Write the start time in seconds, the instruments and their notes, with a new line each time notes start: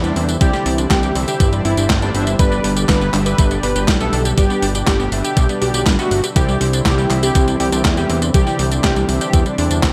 Already playing: analog synth bass E2, analog synth pad D3 E3 G3 C4 E4
0.04 analog polysynth C3 E4 G4 C5 E5, synth arpeggio sound G3, analog synth lead D4, closed hi-hat, tambourine
0.16 analog synth bass E2, synth arpeggio sound C4, open hi-hat
0.29 synth arpeggio sound D4, closed hi-hat, tambourine
0.41 analog synth bass C2, analog polysynth C3 E4 G4 C5 D5, synth arpeggio sound E3, analog synth pad D4, analog synth lead G4, kick, closed hi-hat, tambourine
0.53 synth arpeggio sound G3, snare, tambourine
0.66 analog synth bass C2, synth arpeggio sound C4, open hi-hat
0.78 analog polysynth C3 E4 G4 C5 D5, synth arpeggio sound D4, closed hi-hat, tambourine
0.90 analog synth bass C2, synth arpeggio sound E3, analog synth lead G4, kick, snare, clap, closed hi-hat, tambourine
1.03 synth arpeggio sound G3, closed hi-hat, tambourine
1.15 analog synth bass C2, analog polysynth C3 E4 G4 C5 E5, synth arpeggio sound C4, open hi-hat
1.28 synth arpeggio sound D4, analog synth lead G4, closed hi-hat, tambourine
1.40 analog synth bass G1, synth arpeggio sound E3, kick, closed hi-hat, tambourine
1.52 analog polysynth C3 E4 G4 C5 D5, synth arpeggio sound G3, closed hi-hat, tambourine
1.65 analog synth bass G1, analog polysynth C3 E4 G4 C5 D5, synth arpeggio sound C4, analog synth lead E4, open hi-hat
1.77 analog synth bass G1, synth arpeggio sound D4, closed hi-hat, tambourine
1.90 analog synth bass G1, synth arpeggio sound E3, kick, snare, clap, closed hi-hat, tambourine
2.02 analog polysynth C3 E4 G4 C5 D5, synth arpeggio sound G3, analog synth lead D4, closed hi-hat, tambourine
2.14 analog synth bass G1, synth arpeggio sound C4, analog polysynth E4 G4 C5 E5, open hi-hat
2.27 synth arpeggio sound D4, closed hi-hat, tambourine
2.39 analog synth bass G1, analog synth pad B2 G4, synth arpeggio sound G3, analog polysynth G3 D4 G4 B4 D5, analog synth lead B4, kick, closed hi-hat, tambourine
2.52 synth arpeggio sound B3, tambourine
2.64 analog synth bass G1, synth arpeggio sound D4, open hi-hat
2.76 analog polysynth G3 D4 G4 B4 D5, synth arpeggio sound G4, closed hi-hat, tambourine
2.89 analog synth bass G1, synth arpeggio sound G3, analog synth lead B4, kick, snare, clap, closed hi-hat, tambourine
3.01 synth arpeggio sound B3, tambourine
3.14 analog synth bass G1, analog polysynth G3 D4 G4 B4 E5, synth arpeggio sound D4, clap, open hi-hat
3.26 synth arpeggio sound G4, analog synth lead B4, closed hi-hat, tambourine
3.38 analog synth bass G1, synth arpeggio sound G3, kick, closed hi-hat, tambourine
3.51 analog polysynth G3 D4 G4 B4 D5, synth arpeggio sound B3, closed hi-hat, tambourine
3.63 analog synth bass G1, synth arpeggio sound D4, analog synth lead B4, open hi-hat
3.76 analog synth bass G1, analog polysynth G3 D4 G4 B4 D5, synth arpeggio sound G4, closed hi-hat, tambourine
3.88 analog synth bass B1, synth arpeggio sound G3, kick, snare, clap, closed hi-hat, tambourine
4.00 analog polysynth G3 D4 G4 B4 E5, synth arpeggio sound B3, analog synth lead A4, closed hi-hat, tambourine
4.13 analog synth bass B1, synth arpeggio sound D4, open hi-hat
4.25 synth arpeggio sound G4, closed hi-hat, tambourine
4.37 analog synth bass G1, analog polysynth G3 D4 G4 B4 D5, synth arpeggio sound G3, analog synth lead G4, kick, closed hi-hat, tambourine
4.50 synth arpeggio sound B3, tambourine
4.62 analog synth bass G1, synth arpeggio sound D4, open hi-hat
4.75 analog polysynth G3 D4 G4 B4 D5, synth arpeggio sound G4, closed hi-hat, tambourine
4.87 analog synth bass G1, synth arpeggio sound G3, analog synth lead G4, kick, snare, clap, closed hi-hat, tambourine
5.00 synth arpeggio sound B3, tambourine
5.12 analog synth bass G1, analog polysynth G3 D4 G4 B4 E5, synth arpeggio sound D4, open hi-hat
5.24 analog synth lead G4, synth arpeggio sound G4, closed hi-hat, tambourine
5.37 analog synth bass B1, synth arpeggio sound G3, kick, closed hi-hat, tambourine
5.49 analog polysynth G3 D4 G4 B4 D5, synth arpeggio sound B3, closed hi-hat, tambourine
5.61 analog synth bass B1, synth arpeggio sound D4, analog synth lead G4, open hi-hat
5.74 analog synth bass B1, analog polysynth G3 D4 G4 B4 D5, synth arpeggio sound G4, closed hi-hat, tambourine
5.86 analog synth bass G1, synth arpeggio sound G3, kick, snare, clap, closed hi-hat, tambourine
5.99 analog polysynth G3 D4 G4 B4 E5, synth arpeggio sound B3, analog synth lead F#4, closed hi-hat, tambourine
6.11 analog synth bass G1, synth arpeggio sound D4, open hi-hat
6.24 synth arpeggio sound G4, closed hi-hat, tambourine
6.36 analog synth bass C2, analog polysynth C3 E4 G4 C5 D5, analog synth pad D3 E3 G3 C4 E4, synth arpeggio sound E3, analog synth lead G4, kick, closed hi-hat, tambourine
6.48 synth arpeggio sound G3, tambourine
6.61 analog synth bass C2, synth arpeggio sound C4, open hi-hat
6.73 analog polysynth C3 E4 G4 C5 D5, synth arpeggio sound D4, closed hi-hat, tambourine
6.86 analog synth bass C2, synth arpeggio sound E3, analog synth lead G4, kick, snare, clap, closed hi-hat, tambourine
6.98 synth arpeggio sound G3, tambourine
7.10 analog synth bass C2, analog polysynth C3 E4 G4 C5 E5, synth arpeggio sound C4, clap, open hi-hat
7.23 synth arpeggio sound D4, analog synth lead G4, closed hi-hat, tambourine
7.35 analog synth bass C2, synth arpeggio sound E3, kick, closed hi-hat, tambourine
7.48 analog polysynth C3 E4 G4 C5 D5, synth arpeggio sound G3, closed hi-hat, tambourine
7.60 analog synth bass C2, synth arpeggio sound C4, analog synth lead G4, open hi-hat
7.72 analog synth bass C2, analog polysynth C3 E4 G4 C5 D5, synth arpeggio sound D4, closed hi-hat, tambourine
7.85 analog synth bass E2, synth arpeggio sound E3, kick, snare, clap, closed hi-hat, tambourine
7.97 analog polysynth C3 E4 G4 C5 E5, synth arpeggio sound G3, analog synth lead G4, closed hi-hat, tambourine
8.10 analog synth bass E2, synth arpeggio sound C4, open hi-hat
8.22 synth arpeggio sound D4, closed hi-hat, tambourine
8.34 analog synth bass C2, analog polysynth C3 E4 G4 C5 D5, synth arpeggio sound E3, analog synth pad D4, analog synth lead G4, kick, closed hi-hat, tambourine
8.47 synth arpeggio sound G3, snare, tambourine
8.59 analog synth bass C2, synth arpeggio sound C4, open hi-hat
8.71 analog polysynth C3 E4 G4 C5 D5, synth arpeggio sound D4, closed hi-hat, tambourine
8.84 analog synth bass C2, synth arpeggio sound E3, analog synth lead G4, kick, snare, clap, closed hi-hat, tambourine
8.96 synth arpeggio sound G3, closed hi-hat, tambourine
9.09 analog synth bass C2, analog polysynth C3 E4 G4 C5 E5, synth arpeggio sound C4, open hi-hat
9.21 synth arpeggio sound D4, analog synth lead G4, closed hi-hat, tambourine
9.33 analog synth bass E2, synth arpeggio sound E3, kick, closed hi-hat, tambourine
9.46 analog polysynth C3 E4 G4 C5 D5, synth arpeggio sound G3, closed hi-hat, tambourine
9.58 analog synth bass E2, analog polysynth C3 E4 G4 C5 D5, synth arpeggio sound C4, analog synth lead D4, open hi-hat
9.71 analog synth bass E2, synth arpeggio sound D4, closed hi-hat, tambourine
9.83 analog synth bass C2, synth arpeggio sound E3, kick, snare, clap, closed hi-hat, tambourine